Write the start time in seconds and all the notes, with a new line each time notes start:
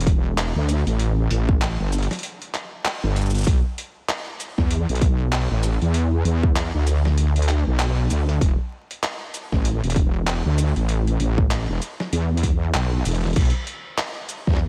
Already playing: E1
0.01 closed hi-hat
0.07 kick, closed hi-hat
0.38 clap, closed hi-hat
0.56 D2
0.69 closed hi-hat, shaker
0.86 A1, closed hi-hat
0.99 closed hi-hat
1.30 A1, closed hi-hat
1.49 kick
1.61 clap, closed hi-hat
1.80 G1
1.92 closed hi-hat, shaker
1.98 closed hi-hat
2.03 closed hi-hat
2.11 snare, closed hi-hat
2.13 closed hi-hat
2.19 closed hi-hat
2.23 closed hi-hat
2.42 closed hi-hat
2.54 clap, closed hi-hat
2.85 clap, closed hi-hat
3.03 G1
3.16 closed hi-hat, shaker
3.21 shaker
3.25 shaker
3.30 shaker
3.35 closed hi-hat, shaker
3.37 closed hi-hat, shaker
3.41 closed hi-hat, shaker
3.44 B1, kick, closed hi-hat, shaker
3.53 closed hi-hat
3.78 closed hi-hat
4.09 clap, closed hi-hat
4.40 closed hi-hat, shaker
4.58 E2, kick, snare
4.71 closed hi-hat
4.89 B1, closed hi-hat
4.95 closed hi-hat
5.01 kick, closed hi-hat
5.32 clap, closed hi-hat
5.51 A1
5.63 closed hi-hat, shaker
5.82 E2, closed hi-hat
5.94 closed hi-hat
6.25 E2, closed hi-hat
6.43 kick
6.56 clap, closed hi-hat
6.74 D2
6.87 closed hi-hat, shaker
7.05 snare
7.18 closed hi-hat
7.36 closed hi-hat
7.42 closed hi-hat
7.48 clap, closed hi-hat
7.67 B1
7.79 clap, closed hi-hat
8.10 D2, closed hi-hat, shaker
8.29 closed hi-hat
8.41 E1, kick, closed hi-hat
8.91 closed hi-hat
9.03 clap, closed hi-hat
9.34 closed hi-hat, shaker
9.52 A1, kick, snare
9.65 closed hi-hat
9.83 E1, closed hi-hat
9.90 closed hi-hat
9.96 kick, closed hi-hat
10.27 clap, closed hi-hat
10.45 D2
10.58 closed hi-hat, shaker
10.76 A1, closed hi-hat
10.89 closed hi-hat
11.07 closed hi-hat
11.20 A1, closed hi-hat
11.38 kick
11.51 clap, closed hi-hat
11.69 E1
11.82 closed hi-hat, shaker
12.00 snare
12.12 E2, closed hi-hat
12.37 closed hi-hat
12.43 kick, closed hi-hat
12.74 B1, clap, closed hi-hat
13.05 E1, closed hi-hat, shaker
13.08 closed hi-hat
13.11 closed hi-hat
13.15 closed hi-hat
13.21 snare, closed hi-hat
13.24 closed hi-hat
13.27 closed hi-hat
13.30 closed hi-hat
13.33 closed hi-hat
13.36 B1, kick, closed hi-hat, crash
13.41 closed hi-hat
13.45 closed hi-hat
13.50 closed hi-hat
13.67 closed hi-hat
13.98 clap, closed hi-hat
14.29 closed hi-hat, shaker
14.47 E2, kick, snare
14.50 snare
14.53 snare
14.57 snare